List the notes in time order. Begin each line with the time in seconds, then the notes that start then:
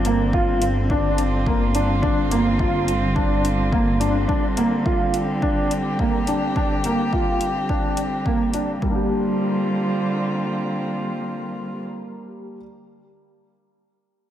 Already playing: G1 D3 C4
0.05 A#3, closed hi-hat
0.33 F4, kick
0.41 G3
0.62 closed hi-hat
0.90 D4 F4, kick
1.18 closed hi-hat
1.46 A#3, kick
1.75 D4, closed hi-hat
2.02 D4, kick
2.31 A#3, closed hi-hat
2.59 F4, kick
2.88 closed hi-hat
3.16 D4, kick
3.45 closed hi-hat
3.72 A#3, kick
4.00 D4, closed hi-hat
4.28 D4, kick
4.57 A#3, closed hi-hat
4.86 F4, kick
5.04 G4
5.14 closed hi-hat
5.42 D4, kick
5.71 closed hi-hat
5.99 A#3, kick
6.27 D4, closed hi-hat
6.56 D4, kick
6.84 A#3, closed hi-hat
7.13 F4, kick
7.41 closed hi-hat
7.69 D4, kick
7.97 closed hi-hat
8.26 A#3, kick
8.54 D4, closed hi-hat
8.82 D3 G3, kick
8.87 G3 A#3 D4
8.95 G4
9.00 C4
9.08 F4